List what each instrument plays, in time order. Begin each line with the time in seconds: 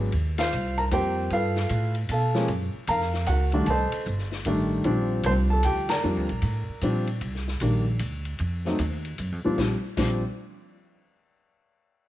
Already playing: upright bass G#1, upright piano F#3 G#3 B3 D4
0.12 upright bass D#2, kick, ride
0.38 upright piano F4 C5 F5, snare, ride
0.52 upright bass C2, hi-hat pedal
0.78 upright piano A#4 A#5, ride
0.91 upright bass F2, upright piano F3 G3 A#3 C4 G4 C5 G5, hi-hat pedal, ride
1.30 upright bass G2, upright piano F4 A4 B4 F5, kick, ride
1.56 snare
1.69 upright bass A2, kick, hi-hat pedal, ride
1.95 ride
2.09 upright bass B2, upright piano A4 A5, kick, hi-hat pedal, ride
2.13 upright piano F5
2.34 upright piano F3 G#3 A#3 C#4, snare
2.48 upright bass F#2, kick, ride
2.74 muted upright bass stroke
2.87 upright bass F2, upright piano A#4 F5 A#5, kick, hi-hat pedal, ride
3.01 snare
3.14 snare
3.26 upright bass C#2, upright piano F#4 A#4 F#5, hi-hat pedal, ride
3.52 upright piano D#3 G3 A3 D4, ride
3.66 upright bass C2, upright piano A5, ride
3.70 upright piano A4 C5 D#5
3.92 muted upright bass stroke, ride
4.05 upright bass G1, kick, hi-hat pedal
4.19 snare
4.32 snare
4.45 upright bass A1, upright piano D#3 G3 A3 D4, kick, ride
4.84 upright bass A#1, upright piano F3 G3 C4 D4, kick, ride
5.23 upright bass C2, upright piano C5, kick, hi-hat pedal, ride
5.29 upright piano C4
5.50 upright piano A4 A5
5.63 upright bass D2, upright piano G4 G5, hi-hat pedal, ride
5.89 upright piano A#4 D5 A#5, snare, ride
6.04 upright bass F2, upright piano F3 G3 C4 D4
6.17 upright bass D2
6.29 upright bass A#1, ride
6.42 upright bass A2, kick, ride
6.69 muted upright bass stroke
6.81 upright bass A#2, upright piano F3 G3 C4 D4, kick, hi-hat pedal, ride
7.07 ride
7.21 upright bass C2, kick, ride
7.35 snare
7.48 snare
7.60 upright bass A#1, upright piano D#3 G3 A#3 D4, kick, hi-hat pedal, ride
7.99 upright bass D2, kick, hi-hat pedal, ride
8.25 ride
8.39 upright bass F2, kick, ride
8.65 upright piano F#3 A3 C4 D#4, snare
8.79 upright bass D#2, kick, hi-hat pedal, ride
9.05 ride
9.18 upright bass F#2, kick, hi-hat pedal, ride
9.32 upright bass F2
9.44 upright bass D#2, upright piano A#2 F3 G3 C4 D4
9.58 upright bass A#1, upright piano F3 G3 C4 D4, kick, snare
9.97 upright bass A#1, upright piano F3 G3 C4 D4, kick, snare, crash